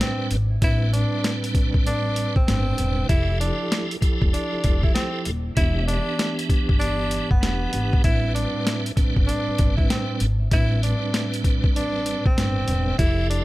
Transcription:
Already playing: tonewheel organ A2 G3 C4 D4 B4
0.01 tenor saxophone C4, snare, closed hi-hat
0.31 upright bass G#1, closed hi-hat
0.61 upright bass A1, tonewheel organ A2 G3 C4 D4 B4, tenor saxophone E4, kick, closed hi-hat
0.93 tenor saxophone D4, closed hi-hat
1.24 snare, closed hi-hat
1.44 closed hi-hat
1.55 kick, closed hi-hat
1.74 upright bass A1, kick
1.87 tenor saxophone D4, closed hi-hat
2.16 closed hi-hat
2.36 upright bass A1, tenor saxophone C4, kick
2.47 upright bass G1, tonewheel organ A2 G3 C4 D4 B4, snare, closed hi-hat
2.77 upright bass E1, tonewheel organ A2 G3 C4 D4 B4, closed hi-hat
3.09 upright bass F1, tonewheel organ F3 E4 G4 A4, tenor saxophone E4, kick, closed hi-hat
3.40 tenor saxophone D4, closed hi-hat
3.72 snare, closed hi-hat
3.91 closed hi-hat
4.01 tonewheel organ F3 E4 G4 A4, kick, closed hi-hat
4.22 upright bass E1, kick
4.34 tenor saxophone D4, closed hi-hat
4.53 muted upright bass stroke
4.64 upright bass E1, kick, closed hi-hat
4.83 tenor saxophone E4, kick
4.94 tenor saxophone C4, snare, closed hi-hat
5.25 upright bass D#1, closed hi-hat
5.55 upright bass E1, tonewheel organ E3 B3 D4 G4, tenor saxophone E4, kick, closed hi-hat
5.88 tenor saxophone D4, closed hi-hat
6.19 snare, closed hi-hat
6.39 closed hi-hat
6.50 kick, closed hi-hat
6.69 upright bass G1, kick
6.79 tenor saxophone D4, closed hi-hat
7.11 closed hi-hat
7.31 upright bass G1, tenor saxophone B3, kick
7.41 upright bass E1, tonewheel organ E3 B3 D4 G4, snare, closed hi-hat
7.72 upright bass G#1, tonewheel organ E3 B3 D4 G4, closed hi-hat
7.93 kick
8.04 upright bass A1, tonewheel organ A2 G3 C4 D4 B4, tenor saxophone E4, kick, closed hi-hat
8.35 tenor saxophone D4, closed hi-hat
8.67 snare, closed hi-hat
8.86 closed hi-hat
8.96 tonewheel organ A2 G3 C4 D4 B4, kick, closed hi-hat
9.16 upright bass G1, kick
9.27 tenor saxophone D4, closed hi-hat
9.48 muted upright bass stroke
9.58 upright bass G1, kick, closed hi-hat
9.77 tenor saxophone E4, kick
9.90 tenor saxophone C4, snare, closed hi-hat
10.20 upright bass G#1, closed hi-hat
10.51 upright bass A1, tonewheel organ A2 G3 C4 D4 B4, tenor saxophone E4, kick, closed hi-hat
10.83 tenor saxophone D4, closed hi-hat
11.14 snare, closed hi-hat
11.34 closed hi-hat
11.44 kick, closed hi-hat
11.64 upright bass A1, kick
11.76 tenor saxophone D4, closed hi-hat
12.06 closed hi-hat
12.26 upright bass A1, tenor saxophone C4, kick
12.37 upright bass G1, tonewheel organ A2 G3 C4 D4 B4, snare, closed hi-hat
12.67 upright bass E1, tonewheel organ A2 G3 C4 D4 B4, closed hi-hat
12.98 upright bass F1, tonewheel organ F3 E4 G4 A4, tenor saxophone E4, kick, closed hi-hat
13.30 tenor saxophone D4, closed hi-hat

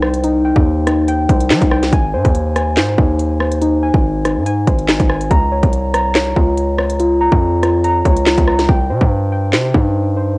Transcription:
Already playing: 808-style bass C2, synth keys D#4 G5
0.02 synth keys C5, cross-stick
0.14 closed hi-hat
0.24 synth keys D#4, closed hi-hat
0.45 synth keys G5
0.56 808-style bass D#2, kick
0.87 synth keys D#4, cross-stick, closed hi-hat
1.08 synth keys G5, closed hi-hat
1.29 808-style bass C2, synth keys C5, kick, closed hi-hat
1.40 closed hi-hat
1.50 808-style bass G3, synth keys D#4, snare, clap
1.62 808-style bass C2, kick, closed hi-hat
1.71 synth keys G5, cross-stick
1.83 snare, closed hi-hat
1.93 808-style bass G#1, synth keys G#5, kick, closed hi-hat
2.14 808-style bass G#2, synth keys C5
2.25 808-style bass D#2, kick, closed hi-hat
2.35 closed hi-hat
2.56 synth keys G#5, cross-stick, closed hi-hat
2.77 808-style bass G#2, synth keys C5, snare, clap, closed hi-hat
2.98 808-style bass D#2, synth keys D#4, kick
3.19 closed hi-hat
3.40 synth keys C5, cross-stick
3.52 closed hi-hat
3.62 synth keys D#4, closed hi-hat
3.83 synth keys G#5
3.94 808-style bass G#1, kick
4.25 synth keys D#4, cross-stick, closed hi-hat
4.36 808-style bass G#2
4.46 synth keys G#5, closed hi-hat
4.67 808-style bass G#1, synth keys C5, kick, closed hi-hat
4.79 closed hi-hat
4.88 synth keys D#4, snare, clap
5.00 808-style bass G#1, kick, closed hi-hat
5.09 synth keys G#5, cross-stick
5.21 closed hi-hat
5.31 808-style bass C#2, synth keys A#5, kick, closed hi-hat
5.52 synth keys C#5
5.63 808-style bass C2, kick, closed hi-hat
5.73 closed hi-hat
5.94 synth keys A#5, cross-stick, closed hi-hat
6.15 synth keys C#5, snare, clap, closed hi-hat
6.36 808-style bass C#2, synth keys F4, kick
6.57 closed hi-hat
6.78 synth keys C#5, cross-stick
6.90 closed hi-hat
7.00 synth keys F4, closed hi-hat
7.21 synth keys A#5
7.32 808-style bass F2, kick
7.63 synth keys F4, cross-stick, closed hi-hat
7.84 synth keys A#5, closed hi-hat
8.05 808-style bass C#2, synth keys C#5, kick, closed hi-hat
8.17 closed hi-hat
8.26 synth keys F4, snare, clap
8.38 808-style bass C#2, kick, closed hi-hat
8.47 synth keys A#5, cross-stick
8.59 snare, closed hi-hat
8.69 808-style bass C2, synth keys G5, kick
8.90 808-style bass C3, synth keys C5
9.01 808-style bass G2, kick
9.32 synth keys G5
9.53 808-style bass C3, synth keys C5, snare, clap
9.74 808-style bass G2, synth keys D#4, kick
10.17 synth keys C5

